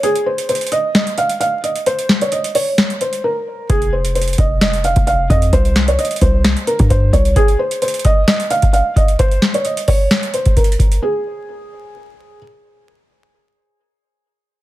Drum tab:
HH |x-----x-----------x-----x--x--x--x--x-----------x-----x-----x-----x-----x-----------x-----x-----|x-----x-----------x-----x-----x-----o-----------x-----x-----x-----x-----------------------------|x-----x-----------x-----x--x--x--x--x-----------x-----x-----x-----x-----x-----------x-----x-----|x-----x-----------x-----x--x--x--x--x-----------x-----x-----x-----x-----x-----------x-----x-----|
SD |------------------------------------------------o-----------------------------------------------|------------o-----------------------------------o-----------------------------------------------|------------------------------------------------o-----------------------------------------------|------------o-----------------------------------o-----------------------------------------------|
BD |------------------------------------------------------------------------------------------------|------------------------------------------------------------------------------------------------|o-----------------------------------o-----------------------------o-----------------o-----------|o-----------------------------------o-----------------------------o-----o-----------o-----------|

HH |x-----x-----------x-----x--x--x--x--x-----------x-----x-----x-----x-----x-----------x-----x-----|x-----x-----------x-----x-----x-----o-----------x-----x-----x-----x-----x---x---x---x-----x-----|------------------------------------------------------------------------------------------------|------------------------------------------------------------------------------------------------|
SD |------------------------------------------------o-----------------------------------------------|------------o-----------------------------------o-----------------------------------------------|------------------------------------------------------------------------------------------------|------------------------------------------------------------------------------------------------|
BD |o-----------------------------------o-----------------------------o-----------------o-----------|o-----------------------------------o-----------------------------o-----o-----------o-----------|------------------------------------------------------------------------------------------------|------------------------------------------------------------------------------------------------|